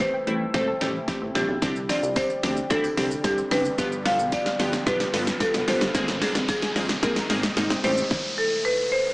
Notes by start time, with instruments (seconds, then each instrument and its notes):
Already playing: ambient pad C3 E3 G3 A3 E4
0.00 synth keys A3 C4 G4, marimba C5, kick, snare, closed hi-hat
0.14 synth pluck G5
0.27 analog synth bass A1, synth pluck G3, synth keys A3 C4 E4, closed hi-hat
0.54 analog synth bass E1, synth pluck G3, synth keys A3 C4 A4, marimba C5, kick, snare, closed hi-hat
0.68 synth pluck A4
0.81 analog synth bass A1, synth keys A3 C4 G4, snare, closed hi-hat
1.08 synth pluck G3, synth keys A3 C4 G4, kick, snare, closed hi-hat
1.22 analog synth bass A1, synth pluck C4
1.35 analog synth bass A#1, synth pluck G3, synth keys A3 C4 D4, marimba G4, snare, closed hi-hat
1.49 analog synth bass B1
1.62 analog synth bass C2, ambient pad D3 G3 D4 G4, synth pluck D3, synth keys C4 D4 G4, kick, snare, closed hi-hat, tambourine, riser, shaker
1.76 shaker
1.89 synth keys C4 D4 F4, marimba D5, snare, open hi-hat, tambourine, shaker
2.03 analog synth bass C2, tambourine, shaker
2.16 synth keys C4 D4 G4, marimba C5, kick, snare, closed hi-hat, tambourine, shaker
2.30 synth pluck D5, shaker
2.43 analog synth bass D2, synth pluck D3, synth keys C4 D4 G4, snare, open hi-hat, tambourine, shaker
2.57 shaker
2.70 analog synth bass D2, synth pluck D3, synth keys C4 D4 E4, marimba A4, kick, snare, closed hi-hat, shaker
2.84 synth pluck G4, tambourine, shaker
2.97 analog synth bass C2, synth keys C4 D4 G4, snare, open hi-hat, tambourine, shaker
3.11 tambourine, shaker
3.24 analog synth bass C2, synth pluck D3, synth keys C4 D4 G4, marimba G4, kick, snare, closed hi-hat, tambourine, shaker
3.38 synth pluck C4, shaker
3.51 analog synth bass F#1, synth pluck D3, synth keys C4 D4 G4, marimba B4, snare, open hi-hat, tambourine, shaker
3.65 shaker
3.78 analog synth bass G1, ambient pad F3 B3 F4, synth pluck F3, synth keys B3 F4 G4, kick, snare, closed hi-hat, tambourine, shaker
3.92 shaker
4.05 synth keys B3 F4 A4, marimba F5, snare, open hi-hat, tambourine, shaker
4.19 analog synth bass B1, shaker
4.32 synth keys B3 F4 G4, marimba D5, kick, snare, closed hi-hat, tambourine, shaker
4.46 synth pluck F5, snare, shaker
4.59 analog synth bass G1, synth pluck F3, synth keys B3 F4 G4, snare, open hi-hat, tambourine, shaker
4.73 snare, tambourine, shaker
4.86 analog synth bass B1, synth pluck F3, synth keys B3 F4 G4, marimba B4, kick, snare, closed hi-hat, shaker
5.00 synth pluck G4, snare, tambourine, shaker
5.13 analog synth bass G1, synth keys B3 F4 A4, snare, open hi-hat, tambourine, shaker
5.27 snare, shaker
5.40 synth pluck F3, synth keys B3 F4 G4, marimba A4, kick, snare, closed hi-hat, tambourine, shaker
5.54 analog synth bass B1, synth pluck B3, snare, shaker
5.68 analog synth bass F#1, synth pluck F3, synth keys B3 F4 G4, marimba C5, snare, open hi-hat, tambourine, shaker
5.81 analog synth bass G1, snare, tambourine, shaker
5.95 analog synth bass G#1, ambient pad C3 D#3 G#3 A#3 D#4, synth pluck G#3, synth keys A#3 C4 G#4, kick, snare, closed hi-hat, tambourine, shaker
6.08 snare, shaker
6.22 synth keys A#3 C4 D4, marimba G#4, snare, open hi-hat, tambourine, shaker
6.35 analog synth bass G#1, snare, shaker
6.48 synth keys A#3 C4 G#4, marimba G#4, kick, snare, closed hi-hat, tambourine, shaker
6.62 synth pluck G#5, snare, shaker
6.76 analog synth bass A#1, synth pluck G#3, synth keys A#3 C4 G#4, snare, open hi-hat, tambourine, shaker
6.89 snare, tambourine, shaker
7.03 analog synth bass A#1, synth pluck G#3, synth keys A#3 C4 G#4, marimba A#4, kick, snare, closed hi-hat, shaker
7.16 synth pluck A#4, snare, tambourine, shaker
7.30 analog synth bass G#1, synth keys A#3 C4 G#4, snare, open hi-hat, tambourine, shaker
7.43 snare, tambourine, shaker
7.57 analog synth bass G#1, synth pluck G#3, synth keys A#3 C4 D#4, snare, closed hi-hat, tambourine, shaker
7.70 synth pluck C4, snare, shaker
7.84 analog synth bass A1, ambient pad E3 G3 A3 E4, synth pluck G3, synth keys A3 C4 G4, marimba C5, open hi-hat, tambourine, shaker
7.97 tambourine, shaker
8.11 kick, snare
8.38 marimba A4
8.65 marimba B4
8.92 marimba C5